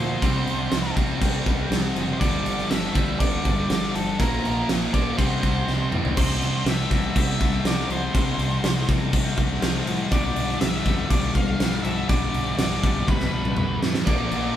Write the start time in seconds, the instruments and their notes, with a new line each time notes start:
Already playing: distorted electric guitar A#2 F3 A#3, lead electric guitar C5
0.00 picked electric bass D2
0.22 picked electric bass C2, distorted electric guitar C3 G3 C4, kick, crash
0.47 picked electric bass C2, crash
0.71 picked electric bass C2, snare, crash
0.95 picked electric bass C2, distorted electric guitar C3 G3 C4, kick, crash
1.21 picked electric bass C2, kick, crash
1.46 picked electric bass C2, distorted electric guitar G3 C4, kick, crash
1.50 distorted electric guitar C3
1.71 picked electric bass C2, distorted electric guitar C3 G3, snare, crash
1.75 distorted electric guitar C4
1.96 picked electric bass F#1, crash
2.13 lead electric guitar C5
2.20 picked electric bass G1, distorted electric guitar G2 D3, lead electric guitar D5, kick, crash
2.24 distorted electric guitar G3
2.45 picked electric bass G1, crash
2.58 snare
2.70 picked electric bass G1, lead electric guitar E5, snare, crash
2.93 picked electric bass D2, distorted electric guitar G2 D3 G3, kick, crash
3.20 picked electric bass G1, lead electric guitar D5, kick, crash
3.45 picked electric bass G1, distorted electric guitar G2 D3 G3, kick, crash
3.70 picked electric bass G1, distorted electric guitar G2 D3, snare, crash
3.74 distorted electric guitar G3
3.95 picked electric bass G1, lead electric guitar A4, crash
4.20 picked electric bass A#1, distorted electric guitar A#2 F3, lead electric guitar A#4, kick, crash
4.24 distorted electric guitar A#3
4.45 picked electric bass A#1, crash
4.69 picked electric bass A#1, snare, crash
4.93 picked electric bass A#1, distorted electric guitar A#2 F3 A#3, lead electric guitar D5, kick, crash
5.18 picked electric bass C2, distorted electric guitar C3 G3, lead electric guitar C5, kick, crash
5.23 distorted electric guitar C4
5.43 picked electric bass C2, kick, crash
5.68 picked electric bass C2, snare
5.91 picked electric bass A2, distorted electric guitar C3 G3 C4, mid tom
6.05 floor tom
6.17 picked electric bass C2, distorted electric guitar C3 G3 C4, lead electric guitar C5, kick, crash
6.42 picked electric bass C2, crash
6.66 picked electric bass C2, lead electric guitar E5, snare, crash
6.90 picked electric bass G2, distorted electric guitar C3 G3 C4, kick, crash
7.16 picked electric bass C2, lead electric guitar E5, kick, crash
7.41 picked electric bass C2, distorted electric guitar C3 G3 C4, kick, crash
7.65 picked electric bass C2, distorted electric guitar C3 G3 C4, lead electric guitar D5, snare, crash
7.89 picked electric bass C2, lead electric guitar C5, crash
8.13 picked electric bass C2, distorted electric guitar C3 G3, kick, crash
8.18 distorted electric guitar C4
8.38 picked electric bass C2, crash
8.63 picked electric bass C2, snare, crash
8.87 picked electric bass C2, distorted electric guitar C3 G3 C4, kick, crash
9.13 picked electric bass C2, kick, crash
9.37 picked electric bass C2, distorted electric guitar C3 G3 C4, kick, crash
9.62 picked electric bass C2, distorted electric guitar C3 G3 C4, snare, crash
9.87 picked electric bass A2, crash
10.11 picked electric bass B1, distorted electric guitar G2 D3 G3, lead electric guitar D5, kick, crash
10.36 picked electric bass B1, crash
10.49 snare
10.61 picked electric bass B1, lead electric guitar E5, snare, crash
10.84 picked electric bass F2, distorted electric guitar G2 D3 G3, kick, crash
11.10 picked electric bass B1, lead electric guitar D5, kick, crash
11.35 picked electric bass B1, distorted electric guitar G2 D3 G3, lead electric guitar F5, kick, crash
11.60 picked electric bass B1, distorted electric guitar G2 D3, snare, crash
11.64 distorted electric guitar G3
11.83 picked electric bass B1, lead electric guitar E5, crash
12.09 picked electric bass B1, distorted electric guitar G2 D3 G3, lead electric guitar D5, kick, crash
12.34 picked electric bass B1, crash
12.58 picked electric bass B1, lead electric guitar D5, snare, crash
12.83 picked electric bass B1, distorted electric guitar G2 D3 G3, kick, crash
13.08 picked electric bass B1, lead electric guitar B4, kick, high tom
13.20 snare
13.32 picked electric bass B1, distorted electric guitar G2 D3 G3
13.45 mid tom
13.57 picked electric bass B1, distorted electric guitar G2 D3, mid tom
13.61 distorted electric guitar G3
13.83 picked electric bass A2, snare
13.94 snare
14.07 picked electric bass A#1, distorted electric guitar A#2 F3 A#3, lead electric guitar D5, kick, crash
14.31 picked electric bass A#1, crash